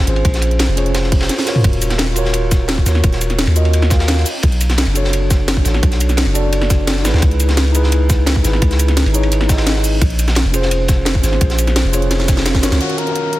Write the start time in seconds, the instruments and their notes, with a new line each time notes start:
Already playing: tine electric piano C#4 F4 G#4 C5
0.05 808-style bass G#1, tine electric piano C#4 F4 G#4, closed hi-hat
0.09 tine electric piano C5
0.16 ride
0.25 808-style bass A#1, kick, closed hi-hat, ride
0.34 snare, closed hi-hat
0.42 closed hi-hat, ride
0.51 closed hi-hat
0.59 snare, closed hi-hat, ride
0.68 808-style bass F1, ride
0.76 tine electric piano C#4 F4 G#4 C#5, closed hi-hat, ride
0.86 closed hi-hat
0.95 snare, closed hi-hat, ride
1.03 snare
1.12 kick, closed hi-hat, open hi-hat
1.21 snare, ride
1.29 snare, closed hi-hat
1.38 snare, open hi-hat
1.45 tine electric piano F4 F#4 A#4, snare, closed hi-hat, ride
1.49 tine electric piano C#5
1.56 mid tom, ride
1.64 808-style bass D#1, kick, closed hi-hat, ride
1.73 closed hi-hat
1.82 closed hi-hat, ride, shaker
1.90 snare, closed hi-hat
1.98 snare, closed hi-hat, ride
2.15 tine electric piano F4 F#4 A#4, closed hi-hat, ride, shaker
2.19 tine electric piano C#5
2.25 snare
2.33 closed hi-hat, ride
2.51 kick, snare, closed hi-hat, ride, shaker
2.68 snare, closed hi-hat, ride
2.78 kick
2.84 808-style bass D#2, tine electric piano F4 F#4 A#4, snare, closed hi-hat, ride, shaker
2.89 tine electric piano C#5
2.95 snare
3.04 808-style bass D#1, kick, closed hi-hat, ride
3.12 snare, closed hi-hat
3.21 closed hi-hat, ride, shaker
3.30 snare, closed hi-hat
3.39 snare, closed hi-hat, ride
3.47 808-style bass D#2, ride
3.55 tine electric piano F4 F#4 A#4 D#5, closed hi-hat, shaker
3.65 ride
3.73 closed hi-hat, ride
3.82 snare
3.90 tine electric piano F4 F#4 A#4 F5, kick, snare, closed hi-hat, ride, shaker
4.00 snare, ride
4.08 snare, closed hi-hat, ride
4.17 snare
4.25 closed hi-hat, open hi-hat, shaker
4.43 808-style bass B1, kick, closed hi-hat, ride
4.52 closed hi-hat
4.61 closed hi-hat, ride, shaker
4.70 snare, closed hi-hat
4.78 snare, closed hi-hat, ride
4.87 808-style bass F#1
4.93 tine electric piano D4 F#4 A4, closed hi-hat, ride, shaker
4.97 tine electric piano C#5
5.04 snare
5.13 closed hi-hat, ride
5.31 kick, snare, closed hi-hat, ride, shaker
5.48 snare, closed hi-hat, ride
5.57 kick
5.63 808-style bass A1, tine electric piano D4 F#4 A4, snare, closed hi-hat, ride, shaker
5.67 tine electric piano C#5
5.74 snare
5.83 808-style bass B1, kick, closed hi-hat, ride
5.91 snare, closed hi-hat
6.00 closed hi-hat, ride, shaker
6.09 snare, closed hi-hat, shaker
6.17 snare, closed hi-hat, ride
6.26 808-style bass F#1, ride
6.34 tine electric piano D4 F#4 A4 D5, closed hi-hat, ride, shaker
6.53 closed hi-hat, ride
6.62 snare
6.70 kick, snare, closed hi-hat, ride, shaker
6.87 snare, closed hi-hat, ride
6.97 snare
7.03 808-style bass A1, tine electric piano D#4 E4 G#4, snare, closed hi-hat, ride, shaker
7.07 tine electric piano B4, snare, ride
7.14 808-style bass D2, snare, ride
7.18 snare, ride
7.22 808-style bass C#2, kick, closed hi-hat, ride
7.31 closed hi-hat
7.40 closed hi-hat, ride, shaker
7.49 snare, closed hi-hat
7.57 snare, closed hi-hat, ride
7.72 tine electric piano D#4 E4 G#4, closed hi-hat, ride, shaker
7.77 tine electric piano B4
7.83 snare
7.92 closed hi-hat, ride
8.09 kick, snare, closed hi-hat, ride, shaker
8.26 snare, closed hi-hat, ride
8.36 kick
8.42 808-style bass G#1, tine electric piano D#4 E4 G#4, snare, closed hi-hat, ride, shaker
8.47 tine electric piano B4
8.53 snare
8.62 808-style bass C#2, kick, closed hi-hat, ride
8.71 snare, closed hi-hat
8.79 closed hi-hat, ride, shaker
8.88 snare, closed hi-hat
8.97 snare, closed hi-hat, ride
9.06 808-style bass G#1, ride
9.13 tine electric piano D#4 E4 G#4 C#5, closed hi-hat, shaker
9.23 ride
9.32 closed hi-hat, ride
9.41 snare
9.47 tine electric piano D#4 E4 G#4, kick, snare, closed hi-hat, ride, shaker
9.51 tine electric piano D#5
9.57 snare, ride
9.66 snare, closed hi-hat, ride
9.76 snare
9.84 closed hi-hat, open hi-hat, shaker
10.01 808-style bass A#1, kick, closed hi-hat, ride
10.10 closed hi-hat
10.19 closed hi-hat, ride, shaker
10.28 snare, closed hi-hat
10.35 snare, closed hi-hat, ride
10.45 808-style bass F1
10.51 tine electric piano C#4 F4 G#4, closed hi-hat, ride, shaker
10.56 tine electric piano C5
10.62 snare
10.71 closed hi-hat, ride
10.88 kick, snare, closed hi-hat, ride, shaker
11.05 snare, closed hi-hat, ride
11.15 kick
11.21 808-style bass G#1, tine electric piano C#4 F4 G#4, snare, closed hi-hat, ride, shaker
11.25 tine electric piano C5
11.32 snare
11.41 808-style bass A#1, kick, closed hi-hat, ride
11.50 snare, closed hi-hat
11.58 closed hi-hat, ride, shaker
11.67 snare, closed hi-hat
11.76 snare, closed hi-hat, ride
11.85 808-style bass F1, ride
11.92 tine electric piano C#4 F4 G#4 C#5, closed hi-hat, ride, shaker
12.02 closed hi-hat
12.11 snare, closed hi-hat, ride
12.20 snare
12.28 kick, snare, closed hi-hat, ride, shaker
12.37 snare
12.45 snare, closed hi-hat, ride, shaker
12.55 kick, snare
12.62 808-style bass G#1, tine electric piano F4 F#4 A#4 C#5, snare, closed hi-hat, ride, shaker
12.72 808-style bass C#2, snare, shaker
12.78 tine electric piano D#3 C#4 F#4 F5, flugelhorn F#4, closed hi-hat, ride, downlifter
12.82 tine electric piano A#4
12.90 closed hi-hat
12.98 flugelhorn A#4, closed hi-hat, ride
13.07 snare, closed hi-hat
13.15 closed hi-hat, ride
13.33 closed hi-hat, ride